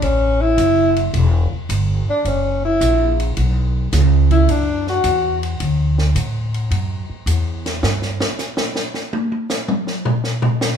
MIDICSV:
0, 0, Header, 1, 5, 480
1, 0, Start_track
1, 0, Key_signature, 2, "major"
1, 0, Tempo, 557621
1, 981, Time_signature, 4, 2, 24, 8
1, 9271, End_track
2, 0, Start_track
2, 0, Title_t, "Tenor saxophone"
2, 0, Program_c, 0, 66
2, 35, Note_on_c, 0, 61, 80
2, 357, Note_on_c, 0, 64, 102
2, 370, Note_off_c, 0, 61, 0
2, 835, Note_off_c, 0, 64, 0
2, 1806, Note_on_c, 0, 62, 72
2, 1965, Note_on_c, 0, 61, 62
2, 1978, Note_off_c, 0, 62, 0
2, 2277, Note_off_c, 0, 61, 0
2, 2282, Note_on_c, 0, 64, 79
2, 2724, Note_off_c, 0, 64, 0
2, 3716, Note_on_c, 0, 64, 82
2, 3882, Note_on_c, 0, 62, 71
2, 3895, Note_off_c, 0, 64, 0
2, 4202, Note_off_c, 0, 62, 0
2, 4211, Note_on_c, 0, 66, 71
2, 4648, Note_off_c, 0, 66, 0
2, 9271, End_track
3, 0, Start_track
3, 0, Title_t, "Upright bass"
3, 0, Program_c, 1, 32
3, 17, Note_on_c, 1, 33, 77
3, 485, Note_off_c, 1, 33, 0
3, 496, Note_on_c, 1, 30, 83
3, 964, Note_off_c, 1, 30, 0
3, 977, Note_on_c, 1, 28, 82
3, 1287, Note_off_c, 1, 28, 0
3, 1456, Note_on_c, 1, 31, 92
3, 1767, Note_off_c, 1, 31, 0
3, 1934, Note_on_c, 1, 30, 70
3, 2403, Note_off_c, 1, 30, 0
3, 2417, Note_on_c, 1, 34, 92
3, 2884, Note_off_c, 1, 34, 0
3, 2902, Note_on_c, 1, 35, 87
3, 3367, Note_off_c, 1, 35, 0
3, 3381, Note_on_c, 1, 37, 93
3, 3846, Note_off_c, 1, 37, 0
3, 3857, Note_on_c, 1, 42, 78
3, 4324, Note_off_c, 1, 42, 0
3, 4339, Note_on_c, 1, 40, 85
3, 4805, Note_off_c, 1, 40, 0
3, 4822, Note_on_c, 1, 38, 89
3, 5286, Note_off_c, 1, 38, 0
3, 5295, Note_on_c, 1, 45, 88
3, 5763, Note_off_c, 1, 45, 0
3, 5773, Note_on_c, 1, 42, 74
3, 6084, Note_off_c, 1, 42, 0
3, 6250, Note_on_c, 1, 40, 85
3, 6720, Note_off_c, 1, 40, 0
3, 6739, Note_on_c, 1, 43, 80
3, 7060, Note_off_c, 1, 43, 0
3, 9271, End_track
4, 0, Start_track
4, 0, Title_t, "Muted upright bass strokes"
4, 1311, Note_on_c, 9, 29, 34
4, 1397, Note_off_c, 9, 29, 0
4, 1791, Note_on_c, 9, 29, 40
4, 1877, Note_off_c, 9, 29, 0
4, 6107, Note_on_c, 9, 29, 38
4, 6193, Note_off_c, 9, 29, 0
4, 9271, End_track
5, 0, Start_track
5, 0, Title_t, "Drums"
5, 18, Note_on_c, 9, 51, 55
5, 104, Note_off_c, 9, 51, 0
5, 498, Note_on_c, 9, 44, 52
5, 498, Note_on_c, 9, 51, 59
5, 584, Note_off_c, 9, 44, 0
5, 584, Note_off_c, 9, 51, 0
5, 830, Note_on_c, 9, 51, 47
5, 916, Note_off_c, 9, 51, 0
5, 978, Note_on_c, 9, 51, 58
5, 1065, Note_off_c, 9, 51, 0
5, 1459, Note_on_c, 9, 44, 47
5, 1459, Note_on_c, 9, 51, 66
5, 1545, Note_off_c, 9, 44, 0
5, 1545, Note_off_c, 9, 51, 0
5, 1939, Note_on_c, 9, 51, 50
5, 2025, Note_off_c, 9, 51, 0
5, 2420, Note_on_c, 9, 44, 58
5, 2420, Note_on_c, 9, 51, 57
5, 2506, Note_off_c, 9, 44, 0
5, 2506, Note_off_c, 9, 51, 0
5, 2751, Note_on_c, 9, 51, 49
5, 2837, Note_off_c, 9, 51, 0
5, 2898, Note_on_c, 9, 51, 58
5, 2984, Note_off_c, 9, 51, 0
5, 3379, Note_on_c, 9, 38, 34
5, 3379, Note_on_c, 9, 44, 64
5, 3379, Note_on_c, 9, 51, 68
5, 3465, Note_off_c, 9, 38, 0
5, 3465, Note_off_c, 9, 44, 0
5, 3465, Note_off_c, 9, 51, 0
5, 3708, Note_on_c, 9, 36, 42
5, 3708, Note_on_c, 9, 51, 40
5, 3794, Note_off_c, 9, 36, 0
5, 3794, Note_off_c, 9, 51, 0
5, 3862, Note_on_c, 9, 51, 61
5, 3948, Note_off_c, 9, 51, 0
5, 4191, Note_on_c, 9, 38, 29
5, 4277, Note_off_c, 9, 38, 0
5, 4336, Note_on_c, 9, 44, 52
5, 4336, Note_on_c, 9, 51, 62
5, 4422, Note_off_c, 9, 44, 0
5, 4422, Note_off_c, 9, 51, 0
5, 4673, Note_on_c, 9, 51, 46
5, 4759, Note_off_c, 9, 51, 0
5, 4820, Note_on_c, 9, 51, 58
5, 4907, Note_off_c, 9, 51, 0
5, 5150, Note_on_c, 9, 38, 50
5, 5236, Note_off_c, 9, 38, 0
5, 5299, Note_on_c, 9, 44, 47
5, 5299, Note_on_c, 9, 51, 67
5, 5386, Note_off_c, 9, 44, 0
5, 5386, Note_off_c, 9, 51, 0
5, 5632, Note_on_c, 9, 51, 40
5, 5718, Note_off_c, 9, 51, 0
5, 5779, Note_on_c, 9, 51, 58
5, 5865, Note_off_c, 9, 51, 0
5, 6258, Note_on_c, 9, 44, 56
5, 6258, Note_on_c, 9, 51, 63
5, 6344, Note_off_c, 9, 44, 0
5, 6344, Note_off_c, 9, 51, 0
5, 6593, Note_on_c, 9, 38, 56
5, 6593, Note_on_c, 9, 51, 48
5, 6679, Note_off_c, 9, 38, 0
5, 6679, Note_off_c, 9, 51, 0
5, 6741, Note_on_c, 9, 38, 82
5, 6827, Note_off_c, 9, 38, 0
5, 6903, Note_on_c, 9, 38, 47
5, 6989, Note_off_c, 9, 38, 0
5, 7062, Note_on_c, 9, 38, 80
5, 7149, Note_off_c, 9, 38, 0
5, 7220, Note_on_c, 9, 38, 42
5, 7220, Note_on_c, 9, 44, 55
5, 7306, Note_off_c, 9, 38, 0
5, 7306, Note_off_c, 9, 44, 0
5, 7377, Note_on_c, 9, 38, 94
5, 7463, Note_off_c, 9, 38, 0
5, 7536, Note_on_c, 9, 38, 67
5, 7622, Note_off_c, 9, 38, 0
5, 7698, Note_on_c, 9, 38, 51
5, 7784, Note_off_c, 9, 38, 0
5, 7859, Note_on_c, 9, 48, 77
5, 7945, Note_off_c, 9, 48, 0
5, 8022, Note_on_c, 9, 48, 39
5, 8108, Note_off_c, 9, 48, 0
5, 8175, Note_on_c, 9, 38, 77
5, 8175, Note_on_c, 9, 44, 53
5, 8262, Note_off_c, 9, 38, 0
5, 8262, Note_off_c, 9, 44, 0
5, 8336, Note_on_c, 9, 47, 94
5, 8422, Note_off_c, 9, 47, 0
5, 8497, Note_on_c, 9, 38, 46
5, 8583, Note_off_c, 9, 38, 0
5, 8654, Note_on_c, 9, 43, 89
5, 8740, Note_off_c, 9, 43, 0
5, 8813, Note_on_c, 9, 38, 53
5, 8899, Note_off_c, 9, 38, 0
5, 8972, Note_on_c, 9, 43, 94
5, 9058, Note_off_c, 9, 43, 0
5, 9135, Note_on_c, 9, 38, 91
5, 9135, Note_on_c, 9, 44, 53
5, 9221, Note_off_c, 9, 38, 0
5, 9221, Note_off_c, 9, 44, 0
5, 9271, End_track
0, 0, End_of_file